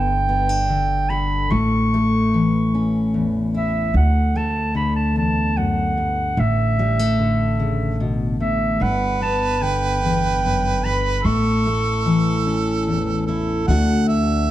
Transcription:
Already playing: upright bass G1, steel-string acoustic guitar G2 D3 B3, clarinet G5
0.29 steel-string acoustic guitar B3
0.49 steel-string acoustic guitar D4
0.69 steel-string acoustic guitar D3
1.09 steel-string acoustic guitar A4, clarinet B5
1.50 upright bass A1, steel-string acoustic guitar A2, clarinet C#6
1.94 steel-string acoustic guitar A3
2.34 steel-string acoustic guitar E3
2.74 steel-string acoustic guitar C#4
3.14 steel-string acoustic guitar E2
3.54 steel-string acoustic guitar E4, clarinet E5
3.94 steel-string acoustic guitar D2, upright bass D2, clarinet F#5
4.35 steel-string acoustic guitar A3, clarinet A5
4.75 steel-string acoustic guitar D3, clarinet B5
4.96 clarinet A5
5.16 steel-string acoustic guitar E2, clarinet A5
5.57 steel-string acoustic guitar F#2, clarinet F#5
5.98 steel-string acoustic guitar G2
6.37 upright bass A1, steel-string acoustic guitar A2, clarinet E5
6.79 steel-string acoustic guitar G3
6.99 steel-string acoustic guitar A3
7.19 steel-string acoustic guitar D3
7.60 steel-string acoustic guitar C#3
8.00 steel-string acoustic guitar B2
8.40 steel-string acoustic guitar A2, clarinet E5
8.80 upright bass G1, steel-string acoustic guitar G2, harmonica B4, clarinet F#5
9.21 steel-string acoustic guitar B3, clarinet A5
9.61 steel-string acoustic guitar D3, clarinet G5
10.03 steel-string acoustic guitar E2
10.44 steel-string acoustic guitar F#2
10.85 steel-string acoustic guitar G2, clarinet B5
11.23 upright bass A1, steel-string acoustic guitar A2, harmonica A4, clarinet C#6
11.67 steel-string acoustic guitar A3
12.06 steel-string acoustic guitar E3
12.47 steel-string acoustic guitar C#4
12.87 steel-string acoustic guitar E2
13.26 steel-string acoustic guitar E4, harmonica A4
13.67 upright bass D2, steel-string acoustic guitar D2 A3 D4 F#4, harmonica F#5
14.08 harmonica E5

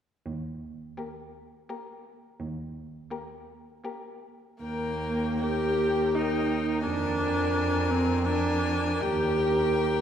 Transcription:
0.26 cello D#2
0.98 viola A#3, violin G4 A#4
1.69 viola A#3, violin G4 A#4
2.40 cello D#2
3.11 viola A#3, violin G4 A#4
3.84 viola A#3, violin G4 A#4
4.63 cello D#2, viola A#3, violin A#4 G5
5.42 viola G4, violin A#4 G5
6.15 viola D#4, violin A#4 G5
6.85 cello F2, viola D4, violin A#4 G#5
7.91 viola C4
8.26 viola D4, violin A#4 G#5
9.01 cello D#2, viola G4, violin A#4 G5

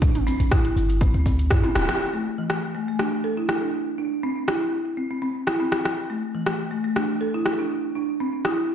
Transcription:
0.02 808-style bass A1, marimba D4, kick, shaker
0.15 closed hi-hat, mid tom, shaker
0.27 marimba C4, shaker
0.40 808-style bass A1, closed hi-hat, shaker
0.51 marimba E4, kick, cross-stick, shaker
0.65 closed hi-hat, shaker
0.76 808-style bass G1, shaker
0.90 closed hi-hat, shaker
1.01 marimba C4, kick, shaker
1.14 808-style bass D2, marimba C4, closed hi-hat, shaker
1.26 marimba C4, kick, shaker
1.39 closed hi-hat, shaker
1.50 808-style bass G2, marimba E4, kick, cross-stick, shaker
1.64 marimba C4, closed hi-hat, mid tom, shaker
1.75 808-style bass D1, cross-stick, mid tom, shaker
1.89 cross-stick, closed hi-hat, shaker
2.14 marimba A3
2.38 marimba E3
2.50 cross-stick
2.75 marimba A3
2.88 marimba A3
2.99 marimba D4, cross-stick
3.24 marimba A4
3.37 marimba E4
3.49 cross-stick
3.62 marimba D4
3.98 marimba D4
4.23 marimba C4
4.48 marimba E4, cross-stick
4.97 marimba C4
5.11 marimba C4
5.22 marimba C4
5.47 marimba E4, cross-stick
5.60 marimba C4
5.72 cross-stick
5.85 cross-stick
6.10 marimba A3
6.35 marimba E3
6.46 cross-stick
6.71 marimba A3
6.84 marimba A3
6.96 marimba D4, cross-stick
7.21 marimba A4
7.34 marimba E4
7.46 cross-stick
7.59 marimba D4
7.96 marimba D4
8.20 marimba C4
8.45 marimba E4, cross-stick

